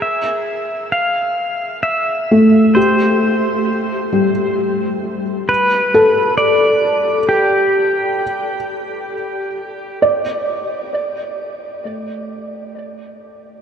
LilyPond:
<<
  \new Staff \with { instrumentName = "Pedal steel guitar" } { \time 3/4 \key g \mixolydian \tempo 4 = 66 e''4 f''4 e''4 | c''2 r4 | b'4 d''4 g'4~ | g'2 r4 |
\key g \dorian r2. | }
  \new Staff \with { instrumentName = "Felt piano" } { \time 3/4 \key g \mixolydian << { r2. | r2. | r8 a'2~ a'8~ | a'2 d''4~ |
\key g \dorian d''2. | } \\ { r2. | g'2.~ | g'2 r4 | r2. |
r2. | } >> }
  \new Staff \with { instrumentName = "Felt piano" } { \time 3/4 \key g \mixolydian r2 r8 a8~ | a4. g4.~ | g2.~ | g8 r2 r8 |
\key g \dorian r4 a2 | }
>>